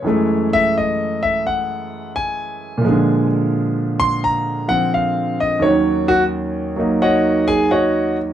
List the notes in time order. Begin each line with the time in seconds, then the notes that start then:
Already playing: C#5
0.02 F#2 E3
0.06 G#3 A3
0.53 E5
0.78 D#5
1.23 E5
1.47 F#5
2.16 G#5
2.78 A#2 F3
2.85 D3 G#3
4.00 C6
4.24 A#5
4.68 F3 C4 F#5
4.94 F5
5.40 D#5
5.59 D#2 D#3 F#3 C#5
5.64 C#4
6.08 F#4
6.76 F#3 A#3 D#4
7.02 F#4 C#5 D#5 F#5
7.47 G#4 G#5
7.71 F#4 C#5 D#5 F#5